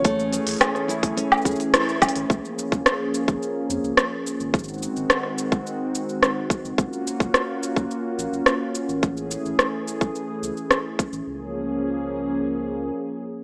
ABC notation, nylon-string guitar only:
X:1
M:4/4
L:1/8
Q:1/4=107
K:Db
V:1 name="Nylon-string guitar"
=A, ^C ^G =E C G E C | z8 | z8 | z8 |
z8 | z8 |]